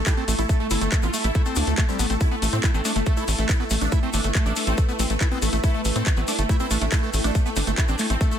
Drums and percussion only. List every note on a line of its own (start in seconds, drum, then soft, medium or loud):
0.06 kick loud
0.06 clap loud
0.06 closed hi-hat medium
0.06 shaker medium
0.28 open hi-hat loud
0.28 shaker loud
0.39 closed hi-hat medium
0.39 shaker soft
0.49 kick loud
0.49 closed hi-hat medium
0.49 shaker medium
0.70 open hi-hat loud
0.70 shaker loud
0.81 closed hi-hat medium
0.81 shaker soft
0.92 kick loud
0.92 clap loud
0.92 closed hi-hat medium
0.92 shaker medium
1.02 shaker soft
1.14 open hi-hat loud
1.14 shaker loud
1.24 closed hi-hat medium
1.24 shaker soft
1.35 kick loud
1.35 closed hi-hat medium
1.35 shaker medium
1.46 shaker soft
1.56 open hi-hat loud
1.56 shaker medium
1.67 closed hi-hat medium
1.67 shaker soft
1.78 kick loud
1.78 clap loud
1.78 closed hi-hat medium
1.78 shaker medium
1.89 shaker soft
1.99 open hi-hat loud
1.99 shaker loud
2.10 closed hi-hat medium
2.10 shaker soft
2.20 kick loud
2.20 closed hi-hat medium
2.20 shaker soft
2.42 open hi-hat loud
2.42 shaker medium
2.53 closed hi-hat medium
2.53 shaker soft
2.64 kick loud
2.64 clap loud
2.64 closed hi-hat medium
2.64 shaker soft
2.74 shaker soft
2.85 open hi-hat loud
2.85 shaker loud
2.96 closed hi-hat medium
2.96 shaker soft
3.06 kick loud
3.06 closed hi-hat medium
3.06 shaker medium
3.17 shaker soft
3.28 open hi-hat loud
3.28 shaker medium
3.39 closed hi-hat medium
3.39 shaker soft
3.49 kick loud
3.49 clap loud
3.49 closed hi-hat medium
3.49 shaker medium
3.70 open hi-hat loud
3.70 shaker medium
3.81 closed hi-hat medium
3.81 shaker soft
3.92 kick loud
3.92 closed hi-hat medium
3.92 shaker medium
4.13 open hi-hat loud
4.13 shaker medium
4.24 closed hi-hat medium
4.24 shaker soft
4.35 kick loud
4.35 clap loud
4.35 closed hi-hat medium
4.35 shaker medium
4.46 shaker soft
4.56 open hi-hat loud
4.56 shaker loud
4.67 closed hi-hat medium
4.67 shaker soft
4.78 kick loud
4.78 closed hi-hat medium
4.78 shaker medium
4.89 shaker soft
4.99 open hi-hat loud
4.99 shaker medium
5.10 closed hi-hat medium
5.10 shaker soft
5.21 kick loud
5.21 clap loud
5.21 closed hi-hat medium
5.21 shaker soft
5.42 open hi-hat loud
5.42 shaker medium
5.53 closed hi-hat medium
5.53 shaker soft
5.64 kick loud
5.64 closed hi-hat medium
5.64 shaker medium
5.85 open hi-hat loud
5.85 shaker medium
5.96 closed hi-hat medium
5.96 shaker soft
6.06 kick loud
6.06 clap loud
6.06 closed hi-hat medium
6.06 shaker medium
6.16 shaker soft
6.28 open hi-hat loud
6.28 shaker medium
6.39 closed hi-hat medium
6.39 shaker soft
6.49 kick loud
6.49 closed hi-hat medium
6.49 shaker medium
6.60 shaker soft
6.71 open hi-hat loud
6.71 shaker loud
6.81 closed hi-hat medium
6.81 shaker soft
6.92 kick loud
6.92 clap loud
6.92 closed hi-hat medium
6.92 shaker medium
7.13 open hi-hat loud
7.13 shaker loud
7.24 closed hi-hat medium
7.24 shaker soft
7.35 kick loud
7.35 closed hi-hat medium
7.35 shaker medium
7.46 shaker soft
7.56 open hi-hat loud
7.56 shaker medium
7.67 closed hi-hat medium
7.67 shaker soft
7.78 kick loud
7.78 clap loud
7.78 closed hi-hat medium
7.78 shaker medium
7.88 shaker soft
7.99 clap soft
7.99 open hi-hat loud
7.99 shaker medium
8.10 closed hi-hat medium
8.10 shaker soft
8.21 kick loud
8.21 closed hi-hat medium
8.21 shaker medium
8.32 shaker soft